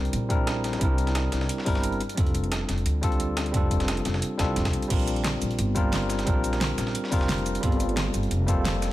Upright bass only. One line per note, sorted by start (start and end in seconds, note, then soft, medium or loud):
0.00 0.12 C2 medium
0.13 0.80 A#1 medium
0.81 1.31 C2 medium
1.33 1.48 C2 medium
1.67 1.99 G1 medium
2.18 2.68 F1 medium
2.69 2.84 F1 medium
2.86 3.53 D2 medium
3.54 4.04 F1 medium
4.05 4.21 F1 medium
4.39 4.58 C2 medium
4.56 4.72 F1 loud
4.73 4.89 D2 medium
4.91 5.40 A#1 medium
5.42 5.57 A#1 medium
5.59 6.26 G1 loud
6.27 6.77 A#1 medium
6.78 6.93 A#1 medium
7.12 7.62 F1 medium
7.63 8.13 G1 medium
8.15 8.30 G1 medium
8.32 8.93 F1 medium